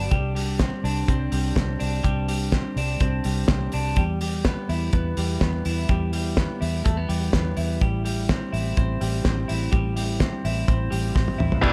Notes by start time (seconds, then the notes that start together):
Already playing: F#3 B3 D4
0.11 C2 G3, kick, closed hi-hat
0.35 G3, open hi-hat
0.59 C4, kick, snare, closed hi-hat
0.84 C2 D4, open hi-hat
1.08 C2 C4, kick, closed hi-hat
1.32 C2 G3, open hi-hat
1.56 C2 C4, kick, snare, closed hi-hat
1.80 C2 D4, open hi-hat
2.03 C2 G3, kick, closed hi-hat
2.28 G3, open hi-hat
2.52 C4, kick, snare, closed hi-hat
2.76 C2 D4, open hi-hat
3.00 C2 C4, kick, closed hi-hat
3.24 C2 G3, open hi-hat
3.48 C2 C4, kick, snare
3.72 C2 D4, open hi-hat
3.96 E2 G3, kick, closed hi-hat
4.21 G3, open hi-hat
4.45 B3, kick, snare, closed hi-hat
4.69 E2 E4, open hi-hat
4.93 E2 B3, kick, closed hi-hat
5.17 E2 G3, open hi-hat
5.41 E2 B3, kick, snare, closed hi-hat
5.65 E2 E4, open hi-hat
5.89 E2 G3, kick, closed hi-hat
6.13 G3, open hi-hat
6.37 B3, kick, snare, closed hi-hat
6.61 E2 E4, open hi-hat
6.84 E2 A3, kick, closed hi-hat
6.97 B3
7.09 E2 G3, open hi-hat
7.33 E2 B3, kick, snare, closed hi-hat
7.57 E2 E4, open hi-hat
7.81 A1 G3, kick, closed hi-hat
8.05 G3, open hi-hat
8.29 C4, kick, snare, closed hi-hat
8.53 A1 E4, open hi-hat
8.77 A1 C4, kick, closed hi-hat
9.01 A1 G3, open hi-hat
9.24 A1 C4, kick, snare, closed hi-hat
9.48 A1 E4, open hi-hat
9.72 A1 G3, kick, closed hi-hat
9.96 G3, open hi-hat
10.20 C4, kick, snare, closed hi-hat
10.45 A1 E4, open hi-hat
10.68 A1 C4, kick, closed hi-hat
10.91 A1 G3, open hi-hat
11.15 A1 C4, kick, snare
11.28 high tom
11.38 A1 E4, mid tom
11.52 floor tom
11.62 E1 E2 B2 E3 G3 B3 D4 E4 G4, kick, crash